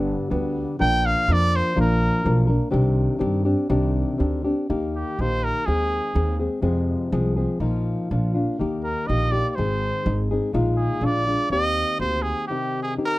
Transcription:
Already playing: upright bass G1, nylon-string guitar G2 D3 G3 B3 D4 G4
0.30 upright bass D2, nylon-string guitar G3 B3 D4 G4
0.79 upright bass A#1, nylon-string guitar A#2 F3 A#3 D4 A#4, trumpet G5
1.06 trumpet F5
1.28 upright bass F2, nylon-string guitar F3 A#3 D4 A#4
1.32 trumpet D5
1.56 trumpet C5
1.76 upright bass A#1, nylon-string guitar A#2 F3 A#3 D4 A#4
1.81 trumpet A#4
2.24 upright bass B1, nylon-string guitar F3 A#3 D4 A#4
2.47 nylon-string guitar A#3 D4 A#4
2.71 upright bass C2, nylon-string guitar C3 D#3 C4 D4 G4
3.19 upright bass G2, nylon-string guitar D#3 C4 D4 G4
3.45 nylon-string guitar C4 D4 G4
3.69 upright bass C2, nylon-string guitar C3 D#3 C4 D4 G4
4.18 upright bass D2, nylon-string guitar D#3 C4 D4 G4
4.44 nylon-string guitar C4 D4 G4
4.70 upright bass D#2, nylon-string guitar D#3 A#3 D#4 G4
4.96 trumpet G4
5.19 upright bass A#1, nylon-string guitar D#3 A#3 D#4 G4, trumpet C5
5.44 trumpet A#4
5.66 upright bass D#2, nylon-string guitar D#3 G#3 C4 G#4, trumpet G#4
6.14 upright bass D#2, nylon-string guitar D#3 G#3 C4 G#4
6.40 nylon-string guitar G#3 C4 G#4
6.62 nylon-string guitar F2 C3 F3 G#3 C4 G#4, upright bass F2
7.12 upright bass C2, nylon-string guitar F3 G#3 C4 G#4
7.36 nylon-string guitar F3 G#3 C4 G#4
7.60 upright bass A#1, nylon-string guitar A#2 F3 A#3 D#4 F4
8.11 upright bass A#1, nylon-string guitar F3 A#3 D4 F4
8.34 nylon-string guitar A#3 D4 F4
8.59 upright bass D#2, nylon-string guitar D#3 A#3 D#4 G4
8.84 trumpet A#4
9.07 upright bass A#1, nylon-string guitar D#3 A#3 D#4 G4, trumpet D#5
9.31 nylon-string guitar A#3 D#4 G4, trumpet D5
9.50 trumpet D5
9.55 upright bass G#1, nylon-string guitar G#2 D#3 G#3 C4 D#4 G#4, trumpet C5
10.05 upright bass G#1, nylon-string guitar G#3 C4 D#4 G#4
10.31 nylon-string guitar G#3 C4 D#4 G#4
10.53 upright bass A#1, nylon-string guitar A#2 D#3 G#3 D#4 F4
10.77 trumpet G#4
11.01 upright bass A#1, nylon-string guitar F3 G#3 D4 F4
11.05 trumpet D5
11.27 nylon-string guitar G#3 D4 F4
11.50 upright bass D#2, nylon-string guitar D#3 A#3 C4 G4, trumpet D#5
11.99 upright bass D2, nylon-string guitar A#3 C4 G4, trumpet C5
12.22 trumpet G#4
12.48 nylon-string guitar C3 D#3 C4 D#4 G4, trumpet G4
12.83 trumpet G#4
12.97 nylon-string guitar D#3 C4 D#4 G4
13.06 trumpet A#4

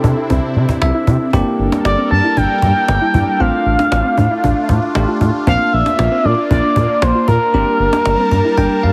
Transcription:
Already playing: analog synth pad C3 C4 D4 E4, tine electric piano C4 E4 G4, analog synth lead A4
0.04 analog synth bass C3, synth arpeggio sound D4, cajon bass
0.17 synth arpeggio sound E4
0.30 analog synth bass C2, synth arpeggio sound C4, cajon bass
0.56 analog synth bass C3, cajon slap
0.69 cajon bass
0.82 analog synth bass C2, tine electric piano E5, cajon slap
0.94 synth arpeggio sound E4
1.07 analog synth bass C3, synth arpeggio sound E4, cajon bass
1.33 analog synth bass G1, analog synth pad G3 D4 A4 A#4, tine electric piano A#3 D4 G4, synth arpeggio sound C4, cajon bass
1.59 analog synth bass G1, cajon slap
1.72 synth arpeggio sound D4, cajon slap
1.85 analog synth bass G1, analog synth lead D5, cajon slap
1.98 synth arpeggio sound C4
2.11 analog synth bass G2, synth arpeggio sound D4, analog synth lead A5, cajon slap
2.24 synth arpeggio sound E4
2.37 analog synth bass G1, synth arpeggio sound D4, analog synth lead G5, cajon bass
2.62 analog synth bass G2, cajon bass
2.88 analog synth bass G1, cajon slap
3.01 synth arpeggio sound E4
3.14 analog synth bass G2, synth arpeggio sound E4, cajon bass
3.40 analog synth bass A1, tine electric piano A3 D4 F4, analog synth pad A3 F4, synth arpeggio sound C4, analog synth lead F5, cajon slap
3.66 analog synth bass A1, cajon slap
3.79 synth arpeggio sound D4, cajon slap
3.92 analog synth bass A1, cajon slap
4.05 synth arpeggio sound C4
4.18 analog synth bass A2, synth arpeggio sound D4, cajon bass
4.31 synth arpeggio sound E4
4.44 analog synth bass A1, synth arpeggio sound D4, cajon bass
4.69 analog synth bass A2, cajon bass
4.95 analog synth bass A1, tine electric piano A3 D4 G4, cajon slap
5.08 synth arpeggio sound F4
5.21 analog synth bass A2, synth arpeggio sound F4, cajon bass
5.47 analog synth bass A#1, analog synth pad A#3, tine electric piano A#3 D4 F4, synth arpeggio sound C4, analog synth lead F5, cajon bass
5.73 analog synth bass A#1, analog synth lead E5, cajon slap
5.86 synth arpeggio sound D4, cajon slap
5.99 analog synth bass A#1, cajon slap
6.12 synth arpeggio sound C4
6.24 analog synth bass A#2, synth arpeggio sound D4, analog synth lead D5, cajon slap
6.37 synth arpeggio sound F4
6.50 analog synth bass A#1, synth arpeggio sound D4, analog synth lead D5, cajon bass
6.76 analog synth bass A#2, cajon bass
7.02 analog synth bass A#1, analog synth lead C5, cajon slap
7.15 synth arpeggio sound F4
7.28 analog synth bass A#2, synth arpeggio sound F4, analog synth lead A#4, cajon bass
7.54 analog synth bass G1, analog synth pad G3 A#4 A5, tine electric piano A#3 D4 G4, synth arpeggio sound C4, cajon slap
7.80 analog synth bass G1, cajon slap
7.93 synth arpeggio sound D4, cajon slap
8.06 analog synth bass G1, cajon slap
8.19 synth arpeggio sound C4
8.31 analog synth bass G2, synth arpeggio sound D4, tine electric piano A#5, cajon bass
8.44 synth arpeggio sound E4
8.57 analog synth bass G1, synth arpeggio sound D4, tine electric piano G5, cajon bass
8.83 analog synth bass G2, tine electric piano F5, cajon slap

